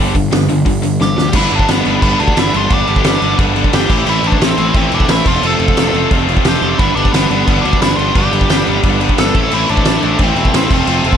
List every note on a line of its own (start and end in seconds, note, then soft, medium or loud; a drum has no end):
0.00 0.13 G1 medium
0.00 0.13 G2 medium
0.00 0.14 D3 medium
0.00 0.14 G3 medium
0.15 0.30 G1 medium
0.15 0.30 G2 medium
0.15 0.30 D3 medium
0.15 kick medium
0.15 open hi-hat medium
0.31 0.47 G1 medium
0.31 0.47 G2 medium
0.31 0.47 D3 medium
0.31 snare loud
0.31 open hi-hat medium
0.49 0.64 G1 medium
0.49 0.64 G2 medium
0.49 0.64 D3 medium
0.49 open hi-hat medium
0.65 0.96 G1 medium
0.65 0.81 G2 medium
0.65 0.81 D3 medium
0.65 kick loud
0.65 open hi-hat medium
0.82 0.98 G2 medium
0.82 0.98 D3 medium
0.82 open hi-hat medium
1.00 1.16 G1 medium
1.00 1.15 G2 medium
1.00 1.15 D3 medium
1.00 1.36 G4 loud
1.00 snare medium
1.16 1.35 D2 medium
1.16 1.31 G2 medium
1.16 1.32 D3 medium
1.16 snare medium
1.33 1.45 G1 medium
1.33 1.50 G2 loud
1.33 1.50 D3 medium
1.33 1.51 G3 loud
1.33 1.52 B3 loud
1.33 1.53 D4 loud
1.33 1.53 E4 loud
1.33 kick loud
1.33 crash loud
1.33 crash medium
1.51 1.63 G1 medium
1.51 1.66 G2 medium
1.51 1.66 D3 medium
1.51 1.68 G3 medium
1.51 1.68 B3 medium
1.51 1.69 D4 loud
1.51 crash medium
1.59 kick medium
1.67 1.80 G1 loud
1.67 1.82 G2 medium
1.67 1.83 D3 medium
1.67 1.84 G3 medium
1.67 1.84 B3 loud
1.67 1.85 D4 loud
1.67 snare loud
1.67 crash medium
1.84 1.97 G1 medium
1.84 2.00 G2 medium
1.84 2.00 D3 medium
1.84 2.01 G3 medium
1.84 2.01 B3 medium
1.84 2.02 D4 loud
1.84 crash medium
2.01 2.14 G1 medium
2.01 2.18 G2 medium
2.01 2.18 D3 loud
2.01 2.19 G3 loud
2.01 2.19 B3 loud
2.01 2.20 D4 loud
2.01 kick loud
2.01 crash loud
2.19 2.32 D2 medium
2.19 2.34 G2 medium
2.19 2.35 D3 medium
2.19 2.35 G3 medium
2.19 2.36 B3 medium
2.19 2.37 D4 loud
2.19 crash medium
2.28 kick medium
2.35 2.49 G1 medium
2.35 2.51 G2 medium
2.35 2.52 D3 loud
2.35 2.52 G3 loud
2.35 2.53 B3 loud
2.35 2.53 D4 loud
2.35 2.56 E4 loud
2.35 snare loud
2.35 crash medium
2.52 2.66 G1 loud
2.52 2.69 G2 medium
2.52 2.69 D3 loud
2.52 2.70 G3 medium
2.52 2.70 B3 loud
2.52 2.71 D4 loud
2.52 crash medium
2.56 2.73 F4 medium
2.70 2.82 G1 loud
2.70 2.85 G2 medium
2.70 2.86 D3 loud
2.70 2.86 G3 medium
2.70 2.87 B3 loud
2.70 2.87 D4 loud
2.70 3.36 G4 loud
2.70 kick loud
2.70 crash medium
2.86 3.00 G1 loud
2.86 3.02 G2 loud
2.86 3.03 D3 medium
2.86 3.03 G3 medium
2.86 3.04 B3 loud
2.86 3.04 D4 loud
2.86 crash medium
2.96 kick medium
3.03 3.16 G1 medium
3.03 3.19 G2 medium
3.03 3.20 D3 medium
3.03 3.21 G3 loud
3.03 3.21 B3 loud
3.03 3.22 D4 loud
3.03 snare loud
3.03 crash medium
3.21 3.33 G1 medium
3.21 3.36 G2 medium
3.21 3.37 D3 medium
3.21 3.38 G3 medium
3.21 3.38 B3 loud
3.21 3.39 D4 medium
3.21 crash medium
3.38 3.61 G1 loud
3.38 3.54 G2 loud
3.38 3.54 D3 loud
3.38 3.55 G3 loud
3.38 3.56 B3 loud
3.38 3.56 D4 loud
3.38 kick loud
3.38 crash medium
3.55 3.71 G2 medium
3.55 3.72 D3 medium
3.55 3.72 G3 medium
3.55 3.73 B3 loud
3.55 3.73 D4 medium
3.55 crash medium
3.64 kick medium
3.72 3.85 G1 loud
3.72 3.88 G2 loud
3.72 3.89 D3 medium
3.72 3.89 G3 loud
3.72 3.90 B3 loud
3.72 3.90 D4 loud
3.72 4.09 G4 loud
3.72 snare loud
3.72 crash medium
3.89 4.01 A1 loud
3.89 4.05 A2 loud
3.89 4.06 E3 loud
3.89 4.07 A3 loud
3.89 4.07 C4 loud
3.89 4.07 E4 loud
3.89 kick loud
3.89 crash loud
4.06 4.18 A1 medium
4.06 4.21 A2 medium
4.06 4.23 E3 medium
4.06 4.24 A3 loud
4.06 4.24 C4 loud
4.06 4.24 E4 loud
4.06 crash medium
4.23 4.35 A1 loud
4.23 4.38 A2 medium
4.23 4.39 E3 medium
4.23 4.40 A3 loud
4.23 4.41 C4 medium
4.23 4.41 E4 loud
4.23 crash medium
4.27 4.43 D4 medium
4.32 kick medium
4.40 4.52 A1 loud
4.40 4.56 A2 medium
4.40 4.56 E3 medium
4.40 4.58 A3 loud
4.40 4.58 C4 loud
4.40 4.58 E4 loud
4.40 snare loud
4.40 crash medium
4.57 4.69 A1 medium
4.57 4.74 A2 medium
4.57 4.74 E3 medium
4.57 4.75 A3 medium
4.57 4.76 C4 medium
4.57 4.75 E4 medium
4.57 crash medium
4.74 4.86 A1 loud
4.74 4.91 A2 medium
4.74 4.91 E3 loud
4.74 4.92 A3 loud
4.74 4.92 C4 loud
4.74 4.93 E4 loud
4.74 kick loud
4.74 crash medium
4.92 5.03 E1 medium
4.92 5.08 A2 medium
4.92 5.08 E3 medium
4.92 5.09 A3 medium
4.92 5.10 C4 loud
4.92 5.11 D4 medium
4.92 5.10 E4 medium
4.92 crash medium
5.00 kick medium
5.08 5.20 A1 loud
5.08 5.25 A2 medium
5.08 5.25 E3 loud
5.08 5.25 A3 loud
5.08 5.26 C4 loud
5.08 5.26 E4 loud
5.08 snare loud
5.08 crash loud
5.26 5.37 F1 loud
5.26 5.42 F2 loud
5.26 5.43 C3 loud
5.26 5.42 F3 medium
5.26 5.42 A3 loud
5.26 5.43 C4 loud
5.26 5.43 F4 loud
5.26 kick loud
5.26 crash loud
5.43 5.54 F1 loud
5.43 5.59 F2 medium
5.43 5.60 C3 medium
5.43 5.59 F3 medium
5.43 5.60 A3 loud
5.43 5.60 C4 loud
5.43 5.61 F4 loud
5.43 6.09 A4 loud
5.43 crash medium
5.59 5.71 F1 medium
5.59 5.76 F2 medium
5.59 5.77 C3 medium
5.59 5.76 F3 medium
5.59 5.77 A3 medium
5.59 5.78 C4 loud
5.59 5.78 F4 loud
5.59 crash medium
5.68 kick medium
5.76 5.88 F1 medium
5.76 5.92 F2 medium
5.76 5.93 C3 medium
5.76 5.93 F3 medium
5.76 5.94 A3 loud
5.76 5.95 C4 medium
5.76 5.95 F4 loud
5.76 snare loud
5.76 crash medium
5.93 6.05 F1 medium
5.93 6.10 F2 medium
5.93 6.11 C3 medium
5.93 6.09 F3 medium
5.93 6.10 A3 medium
5.93 6.11 C4 loud
5.93 6.11 F4 medium
5.93 crash medium
6.10 6.34 F1 medium
6.10 6.27 F2 loud
6.10 6.28 C3 loud
6.10 6.27 F3 medium
6.10 6.28 A3 loud
6.10 6.29 C4 loud
6.10 6.29 F4 loud
6.10 kick loud
6.10 crash medium
6.28 6.44 F2 medium
6.28 6.45 C3 medium
6.28 6.43 F3 medium
6.28 6.44 A3 medium
6.28 6.44 C4 medium
6.28 6.45 F4 loud
6.28 crash medium
6.37 kick medium
6.44 6.56 F1 medium
6.44 6.61 F2 medium
6.44 6.63 C3 medium
6.44 6.60 F3 loud
6.44 6.61 A3 medium
6.44 6.62 C4 medium
6.44 6.62 F4 medium
6.44 6.82 G4 loud
6.44 snare loud
6.44 crash medium
6.61 6.73 F1 medium
6.61 6.79 F2 medium
6.61 6.79 C3 medium
6.61 6.78 F3 medium
6.61 6.78 A3 medium
6.61 6.79 C4 medium
6.61 6.79 F4 medium
6.61 crash medium
6.78 6.91 G1 medium
6.78 6.95 G2 medium
6.78 6.95 D3 medium
6.78 6.97 G3 loud
6.78 6.97 B3 loud
6.78 6.98 D4 loud
6.78 6.95 E4 loud
6.78 kick loud
6.78 crash medium
6.96 7.08 G1 medium
6.96 7.12 G2 medium
6.96 7.12 D3 loud
6.96 7.14 G3 medium
6.96 7.14 B3 medium
6.96 7.15 D4 loud
6.96 crash medium
7.05 kick medium
7.13 7.25 G1 medium
7.13 7.29 G2 medium
7.13 7.29 D3 medium
7.13 7.30 G3 medium
7.13 7.30 B3 medium
7.13 7.31 D4 loud
7.13 snare loud
7.13 crash medium
7.30 7.42 G1 medium
7.30 7.46 G2 medium
7.30 7.47 D3 medium
7.30 7.48 G3 medium
7.30 7.49 B3 medium
7.30 7.49 D4 medium
7.30 crash medium
7.48 7.59 G1 loud
7.48 7.62 G2 loud
7.48 7.63 D3 loud
7.48 7.64 G3 loud
7.48 7.64 B3 loud
7.48 7.64 D4 loud
7.48 kick loud
7.48 crash medium
7.61 7.76 D2 medium
7.61 7.80 G2 medium
7.61 7.81 D3 medium
7.61 7.81 G3 medium
7.61 7.82 B3 medium
7.61 7.79 D4 medium
7.61 crash medium
7.66 7.83 D4 loud
7.73 kick medium
7.81 7.93 G1 medium
7.81 7.97 G2 medium
7.81 7.98 D3 loud
7.81 7.98 G3 loud
7.81 7.99 B3 medium
7.81 7.99 D4 loud
7.81 7.96 E4 loud
7.81 snare loud
7.81 crash loud
7.97 8.10 G1 medium
7.97 8.14 G2 medium
7.97 8.15 D3 loud
7.97 8.15 G3 loud
7.97 8.15 B3 medium
7.97 8.16 D4 medium
7.97 8.15 F4 medium
7.97 crash medium
8.15 8.27 G1 loud
8.15 8.30 G2 medium
8.15 8.31 D3 loud
8.15 8.32 G3 loud
8.15 8.32 B3 loud
8.15 8.33 D4 loud
8.15 8.80 G4 loud
8.15 kick loud
8.15 crash medium
8.32 8.44 G1 medium
8.32 8.48 G2 medium
8.32 8.49 D3 medium
8.32 8.49 G3 loud
8.32 8.50 B3 loud
8.32 8.50 D4 loud
8.32 crash medium
8.41 kick medium
8.49 8.61 G1 loud
8.49 8.65 G2 medium
8.49 8.66 D3 loud
8.49 8.67 G3 loud
8.49 8.67 B3 medium
8.49 8.68 D4 loud
8.49 snare loud
8.49 crash medium
8.67 8.79 G1 medium
8.67 8.82 G2 medium
8.67 8.83 D3 medium
8.67 8.84 G3 medium
8.67 8.84 B3 medium
8.67 8.85 D4 loud
8.67 crash medium
8.83 9.06 G1 loud
8.83 8.99 G2 loud
8.83 9.00 D3 loud
8.83 9.01 G3 loud
8.83 9.01 B3 loud
8.83 9.02 D4 loud
8.83 kick loud
8.83 crash medium
9.00 9.18 G2 medium
9.00 9.18 D3 loud
9.00 9.19 G3 loud
9.00 9.19 B3 medium
9.00 9.20 D4 loud
9.00 crash medium
9.09 kick medium
9.18 9.30 G1 loud
9.18 9.34 G2 medium
9.18 9.34 D3 loud
9.18 9.35 G3 loud
9.18 9.35 B3 loud
9.18 9.35 D4 loud
9.18 9.54 A4 loud
9.18 snare loud
9.18 crash medium
9.35 9.46 A1 loud
9.35 9.51 A2 loud
9.35 9.51 E3 loud
9.35 9.53 A3 loud
9.35 9.53 C4 loud
9.35 9.53 E4 loud
9.35 kick loud
9.35 crash medium
9.51 9.64 A1 loud
9.51 9.68 A2 loud
9.51 9.69 E3 loud
9.51 9.70 A3 loud
9.51 9.71 C4 loud
9.51 9.71 E4 loud
9.51 crash medium
9.69 9.81 A1 loud
9.69 9.85 A2 medium
9.69 9.85 E3 medium
9.69 9.87 A3 medium
9.69 9.87 C4 loud
9.69 10.20 D4 loud
9.69 9.87 E4 loud
9.69 crash medium
9.77 kick medium
9.85 9.98 A1 medium
9.85 10.02 A2 medium
9.85 10.02 E3 loud
9.85 10.04 A3 loud
9.85 10.04 C4 loud
9.85 10.04 E4 loud
9.85 snare loud
9.85 crash medium
10.03 10.14 A1 medium
10.03 10.18 A2 medium
10.03 10.19 E3 medium
10.03 10.20 A3 medium
10.03 10.20 C4 loud
10.03 10.21 E4 medium
10.03 crash medium
10.19 10.31 A1 medium
10.19 10.35 A2 medium
10.19 10.35 E3 loud
10.19 10.36 A3 loud
10.19 10.36 C4 loud
10.19 10.37 E4 loud
10.19 kick loud
10.19 crash medium
10.36 10.47 E1 medium
10.36 10.52 A2 medium
10.36 10.52 E3 medium
10.36 10.53 A3 loud
10.36 10.54 C4 medium
10.36 10.54 E4 medium
10.36 crash medium
10.45 kick medium
10.53 10.65 A1 loud
10.53 10.69 A2 medium
10.53 10.69 E3 loud
10.53 10.70 A3 loud
10.53 10.70 C4 loud
10.53 10.70 E4 loud
10.53 snare loud
10.53 crash medium
10.71 10.82 F1 medium
10.71 10.86 F2 loud
10.71 10.87 C3 loud
10.71 10.86 F3 loud
10.71 10.87 A3 loud
10.71 10.88 C4 loud
10.71 10.88 F4 loud
10.71 kick loud
10.71 crash loud
10.87 10.99 F1 medium
10.87 11.02 F2 medium
10.87 11.03 C3 loud
10.87 11.03 F3 medium
10.87 11.04 A3 medium
10.87 11.04 C4 loud
10.87 11.05 F4 loud
10.87 crash loud
11.03 11.16 F1 loud
11.03 11.17 F2 medium
11.03 11.17 C3 medium
11.03 11.17 F3 medium
11.03 11.17 A3 medium
11.03 11.17 C4 medium
11.03 11.17 F4 loud
11.03 crash medium
11.13 kick medium